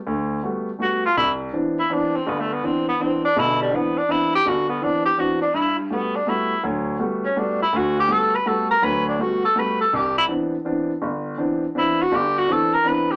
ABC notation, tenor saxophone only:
X:1
M:3/4
L:1/8
Q:"Swing" 1/4=164
K:Clyd
V:1 name="Tenor saxophone"
z4 F =F | E z2 E D C | (3B, A, B, C B, C D | E G, B, D E G |
F B, D G F D | E G, B, D E2 | z3 ^C D E | F G A B A _B |
B D F A B A | G E z4 | z4 E F | G F A _B =B G |]